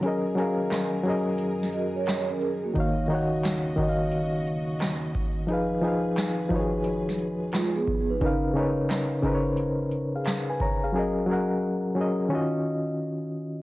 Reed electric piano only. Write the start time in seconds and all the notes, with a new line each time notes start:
0.01 F#3 C#4 G#4
0.06 A#4 D#5
0.35 F#3 C#4 G#4
0.40 A#4 F5
1.03 F#3 C#4 G#4
1.08 A#4 D#5
2.74 D#3 D#4 F#4
2.78 C#5 F5
3.08 D#3 D#4 F#4
3.13 C#5 F#5
3.76 D#3 D#4 F#4
3.81 C#5 D#5
3.89 F5
5.47 F3 D#4 G#4
5.52 B4 F5
5.81 F3 D#4 G#4
5.86 B4 F5
6.49 F3 D#4 F#4
6.54 B4 C#5
6.59 G#4
8.20 C#3 C#4 D#4 A#4
8.25 B4 F5
8.54 C#3 C#4 D#4 A#4
8.59 B4 C#5
9.22 C#3 C#4 D#4 A#4
9.27 B4 C5
9.35 C#5
10.16 G#4 F5
10.50 B4 G#5
10.62 C#5 A#5
10.84 G#4 F5
10.92 F#3 C#4 G#4
10.97 A#4 D#5
11.26 F#3 C#4 G#4
11.31 A#4 F#5
11.95 F#3 C#4 G#4
11.99 A#4 D#5
12.29 D#3 C#4 F4
12.33 F#4 D#5